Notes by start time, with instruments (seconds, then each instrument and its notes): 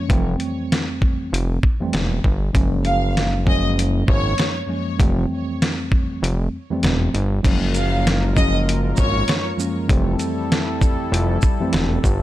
0.08 analog synth bass F1, tine electric piano F2 E3 G3 A3 C4, kick, closed hi-hat
0.40 closed hi-hat
0.72 snare, closed hi-hat
1.02 kick
1.32 analog synth bass F1, closed hi-hat
1.63 kick
1.80 tine electric piano F2 E3 G3 A3 C4
1.93 analog synth bass E1, snare, closed hi-hat
2.24 analog synth bass G1, kick
2.53 analog synth bass F#1, tine electric piano F#2 F3 G#3 A#3 C#4, kick, closed hi-hat
2.85 violin section F5, closed hi-hat
3.17 snare, closed hi-hat
3.45 tine electric piano F#2 F3 G#3 A#3 C#4, violin section D#5, kick
3.79 closed hi-hat
4.08 analog synth bass G#1, violin section C#5, kick
4.38 snare, closed hi-hat
4.67 tine electric piano F#2 F3 G#3 A#3 C#4
4.98 analog synth bass F1, tine electric piano F2 E3 G3 A3 C4, kick, closed hi-hat
5.62 snare, closed hi-hat
5.92 kick
6.22 analog synth bass F1, closed hi-hat
6.70 tine electric piano F2 E3 G3 A3 C4
6.83 analog synth bass E1, snare, closed hi-hat
7.14 analog synth bass G1, closed hi-hat
7.43 analog synth bass F#1, tine electric piano F#2 F3 G#3 A#3 C#4, analog synth pad G#3 F4 A#4, kick, closed hi-hat, crash
7.75 violin section F5, closed hi-hat, shaker
8.07 snare, closed hi-hat
8.35 tine electric piano F#2 F3 G#3 A#3 C#4, violin section D#5, kick, shaker
8.69 closed hi-hat
8.97 analog synth bass G#1, violin section C#5, kick, shaker
9.28 snare, closed hi-hat
9.57 tine electric piano F#2 F3 G#3 A#3 C#4, shaker
9.88 analog synth bass F1, tine electric piano F2 E3 G3 A3 C4, analog synth pad G3 E4 A4, kick, closed hi-hat
10.19 closed hi-hat, shaker
10.52 snare, closed hi-hat
10.81 kick, shaker
11.12 analog synth bass F1, closed hi-hat
11.42 kick, shaker
11.60 tine electric piano F2 E3 G3 A3 C4
11.73 analog synth bass E1, snare, closed hi-hat
12.04 analog synth bass G1, kick, shaker